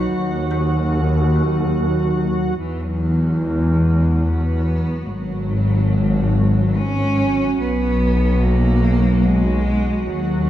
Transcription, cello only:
2.59 2.83 E3 medium
2.81 3.45 F#3 medium
3.44 4.27 G#3 medium
4.26 5.11 B3 medium
5.10 6.78 F#3 loud
6.76 7.59 C#4 loud
7.61 8.45 B3 medium
8.43 9.28 A#3 loud
9.26 10.11 G#3 loud
10.10 10.50 F#3 medium

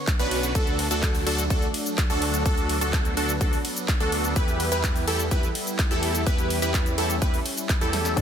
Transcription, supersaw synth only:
0.19 0.52 B3 loud
0.19 0.52 C#4 medium
0.19 0.52 D4 medium
0.19 0.52 F#4 medium
0.19 0.52 B4 loud
0.55 0.88 D4 loud
0.55 0.88 F#4 medium
0.55 0.88 A4 loud
0.91 1.24 D4 medium
0.91 1.24 F#4 medium
0.91 1.24 A4 medium
1.27 1.44 D4 loud
1.27 1.44 F#4 medium
1.27 1.44 A4 loud
1.50 1.68 D4 medium
1.50 1.68 F#4 medium
1.50 1.68 A4 medium
2.10 2.43 D4 loud
2.10 2.43 F#4 medium
2.10 2.43 A4 loud
2.46 2.78 D4 loud
2.46 2.78 F#4 medium
2.46 2.78 A4 loud
2.81 3.14 D4 medium
2.81 3.14 F#4 medium
2.81 3.14 A4 medium
3.17 3.34 D4 loud
3.17 3.34 F#4 medium
3.17 3.34 A4 loud
3.41 3.58 D4 medium
3.41 3.58 F#4 medium
3.41 3.58 A4 medium
4.00 4.33 D4 loud
4.00 4.33 F#4 medium
4.00 4.33 A4 loud
4.36 4.69 E4 loud
4.36 4.69 G4 medium
4.36 4.69 B4 loud
4.72 5.05 E4 medium
4.72 5.05 G4 medium
4.72 5.05 B4 medium
5.08 5.25 E4 loud
5.08 5.25 G4 medium
5.08 5.25 A4 loud
5.31 5.48 E4 medium
5.31 5.48 G4 medium
5.31 5.48 B4 medium
5.91 6.24 E4 loud
5.91 6.24 G4 medium
5.91 6.24 A4 loud
6.27 6.59 E4 loud
6.27 6.59 G4 medium
6.27 6.59 B4 loud
6.62 6.95 E4 medium
6.62 6.95 G4 medium
6.62 6.95 B4 medium
6.98 7.15 E4 loud
6.98 7.15 G4 medium
6.98 7.15 A4 loud
7.22 7.39 E4 medium
7.22 7.39 G4 medium
7.22 7.39 B4 medium
7.81 8.14 E4 loud
7.81 8.14 G4 medium
7.81 8.14 A4 loud
8.17 8.21 D4 medium
8.17 8.21 F#4 medium
8.17 8.21 A4 loud

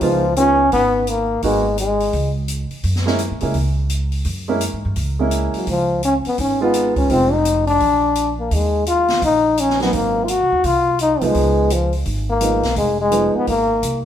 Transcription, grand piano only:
0.02 0.21 G#3 medium
0.02 0.21 B3 soft
0.02 0.21 D#4 soft
0.02 0.22 F4 medium
0.37 0.56 G#3 soft
0.37 0.57 B3 soft
0.37 0.57 D#4 soft
0.37 0.57 F4 medium
1.43 1.63 A#3 soft
1.43 1.63 B3 soft
1.43 1.63 D#4 soft
1.43 1.63 F#4 medium
3.06 3.18 G#3 medium
3.06 3.18 A#3 medium
3.06 3.18 C#4 medium
3.06 3.18 E4 medium
3.41 3.53 G#3 medium
3.41 3.54 A#3 soft
3.41 3.54 C#4 soft
3.41 3.54 E4 medium
4.48 4.60 G#3 medium
4.48 4.60 A#3 medium
4.48 4.60 C#4 medium
4.48 4.60 E4 medium
5.19 5.65 G#3 medium
5.19 5.65 A#3 medium
5.19 5.65 C#4 medium
5.19 5.66 E4 medium
6.61 7.07 G#3 medium
6.61 7.07 B3 soft
6.61 7.07 D#4 medium
6.61 7.07 F4 medium
7.09 7.29 G#3 soft
7.09 7.29 C4 soft
7.09 7.30 D#4 soft
7.09 7.30 F4 medium
9.80 10.26 F#3 soft
9.80 10.26 A#3 soft
9.80 10.26 C4 soft
9.80 10.26 D#4 medium
11.22 11.68 F3 medium
11.22 11.68 G#3 soft
11.22 11.68 B3 medium
11.22 11.68 D#4 medium
12.41 12.61 F3 soft
12.41 12.61 G#3 soft
12.41 12.61 B3 soft
12.41 12.62 D#4 medium
13.11 13.47 F3 medium
13.11 13.47 G#3 soft
13.11 13.47 B3 soft
13.11 13.47 D#4 medium

